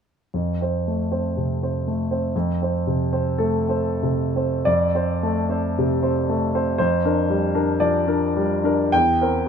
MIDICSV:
0, 0, Header, 1, 2, 480
1, 0, Start_track
1, 0, Key_signature, -1, "major"
1, 0, Tempo, 1013514
1, 156, Time_signature, 2, 2, 24, 8
1, 1596, Tempo, 1282051
1, 2076, Tempo, 1098901
1, 2556, Tempo, 1016949
1, 3516, Tempo, 1138520
1, 3996, Tempo, 1045296
1, 4253, End_track
2, 0, Start_track
2, 0, Title_t, "Grand piano"
2, 0, Program_c, 0, 0
2, 160, Note_on_c, 0, 41, 40
2, 243, Control_c, 0, 64, 127
2, 275, Note_off_c, 0, 41, 0
2, 288, Note_on_c, 0, 60, 29
2, 295, Note_on_c, 0, 72, 33
2, 390, Note_off_c, 0, 60, 0
2, 394, Note_off_c, 0, 72, 0
2, 415, Note_on_c, 0, 57, 33
2, 529, Note_on_c, 0, 60, 30
2, 529, Note_on_c, 0, 72, 33
2, 596, Note_off_c, 0, 57, 0
2, 630, Note_off_c, 0, 60, 0
2, 630, Note_off_c, 0, 72, 0
2, 649, Note_on_c, 0, 48, 31
2, 771, Note_on_c, 0, 60, 29
2, 773, Note_on_c, 0, 72, 34
2, 831, Note_off_c, 0, 48, 0
2, 869, Note_off_c, 0, 60, 0
2, 870, Note_off_c, 0, 72, 0
2, 888, Note_on_c, 0, 57, 37
2, 1000, Note_on_c, 0, 72, 39
2, 1001, Note_on_c, 0, 60, 35
2, 1067, Note_off_c, 0, 57, 0
2, 1100, Note_off_c, 0, 60, 0
2, 1100, Note_off_c, 0, 72, 0
2, 1114, Control_c, 0, 64, 0
2, 1117, Note_on_c, 0, 41, 50
2, 1176, Control_c, 0, 64, 127
2, 1226, Note_off_c, 0, 41, 0
2, 1241, Note_on_c, 0, 60, 36
2, 1245, Note_on_c, 0, 72, 39
2, 1341, Note_off_c, 0, 60, 0
2, 1343, Note_off_c, 0, 72, 0
2, 1360, Note_on_c, 0, 48, 43
2, 1481, Note_on_c, 0, 60, 40
2, 1481, Note_on_c, 0, 72, 45
2, 1552, Note_off_c, 0, 48, 0
2, 1591, Note_off_c, 0, 60, 0
2, 1591, Note_off_c, 0, 72, 0
2, 1601, Note_on_c, 0, 69, 62
2, 1606, Note_on_c, 0, 57, 41
2, 1714, Note_on_c, 0, 60, 38
2, 1718, Note_on_c, 0, 72, 44
2, 1785, Note_off_c, 0, 57, 0
2, 1824, Note_off_c, 0, 60, 0
2, 1826, Note_off_c, 0, 72, 0
2, 1842, Note_on_c, 0, 48, 42
2, 1965, Note_on_c, 0, 60, 36
2, 1969, Note_on_c, 0, 72, 39
2, 2036, Note_off_c, 0, 48, 0
2, 2067, Note_off_c, 0, 60, 0
2, 2069, Note_off_c, 0, 72, 0
2, 2076, Note_on_c, 0, 74, 65
2, 2079, Note_off_c, 0, 69, 0
2, 2082, Note_on_c, 0, 41, 44
2, 2085, Control_c, 0, 64, 0
2, 2168, Control_c, 0, 64, 127
2, 2201, Note_off_c, 0, 41, 0
2, 2206, Note_on_c, 0, 60, 32
2, 2208, Note_on_c, 0, 72, 32
2, 2313, Note_off_c, 0, 60, 0
2, 2314, Note_off_c, 0, 72, 0
2, 2328, Note_on_c, 0, 57, 36
2, 2442, Note_on_c, 0, 60, 30
2, 2447, Note_on_c, 0, 72, 36
2, 2512, Note_off_c, 0, 57, 0
2, 2545, Note_off_c, 0, 60, 0
2, 2548, Note_off_c, 0, 72, 0
2, 2572, Note_on_c, 0, 48, 31
2, 2686, Note_on_c, 0, 60, 31
2, 2686, Note_on_c, 0, 72, 34
2, 2759, Note_off_c, 0, 48, 0
2, 2792, Note_off_c, 0, 60, 0
2, 2792, Note_off_c, 0, 72, 0
2, 2812, Note_on_c, 0, 57, 36
2, 2932, Note_on_c, 0, 60, 35
2, 2933, Note_on_c, 0, 72, 37
2, 2997, Note_off_c, 0, 57, 0
2, 3034, Note_off_c, 0, 60, 0
2, 3034, Note_off_c, 0, 72, 0
2, 3038, Note_off_c, 0, 74, 0
2, 3043, Note_on_c, 0, 72, 54
2, 3045, Control_c, 0, 64, 0
2, 3050, Note_on_c, 0, 41, 45
2, 3134, Control_c, 0, 64, 127
2, 3159, Note_off_c, 0, 41, 0
2, 3170, Note_on_c, 0, 62, 33
2, 3170, Note_on_c, 0, 70, 34
2, 3270, Note_off_c, 0, 62, 0
2, 3270, Note_off_c, 0, 70, 0
2, 3287, Note_on_c, 0, 55, 37
2, 3404, Note_on_c, 0, 62, 34
2, 3404, Note_on_c, 0, 70, 36
2, 3473, Note_off_c, 0, 55, 0
2, 3509, Note_off_c, 0, 70, 0
2, 3510, Note_off_c, 0, 62, 0
2, 3518, Note_off_c, 0, 72, 0
2, 3522, Note_on_c, 0, 74, 57
2, 3524, Note_on_c, 0, 53, 33
2, 3637, Note_on_c, 0, 62, 32
2, 3640, Note_on_c, 0, 70, 36
2, 3707, Note_off_c, 0, 53, 0
2, 3744, Note_off_c, 0, 62, 0
2, 3746, Note_off_c, 0, 70, 0
2, 3761, Note_on_c, 0, 55, 38
2, 3876, Note_on_c, 0, 62, 35
2, 3881, Note_on_c, 0, 70, 36
2, 3953, Note_off_c, 0, 55, 0
2, 3983, Note_off_c, 0, 62, 0
2, 3986, Note_off_c, 0, 70, 0
2, 3996, Note_on_c, 0, 79, 75
2, 3999, Note_off_c, 0, 74, 0
2, 4000, Note_on_c, 0, 40, 48
2, 4005, Control_c, 0, 64, 0
2, 4079, Control_c, 0, 64, 127
2, 4118, Note_off_c, 0, 40, 0
2, 4130, Note_on_c, 0, 60, 34
2, 4131, Note_on_c, 0, 70, 39
2, 4231, Note_off_c, 0, 60, 0
2, 4231, Note_off_c, 0, 70, 0
2, 4253, Note_off_c, 0, 79, 0
2, 4253, End_track
0, 0, End_of_file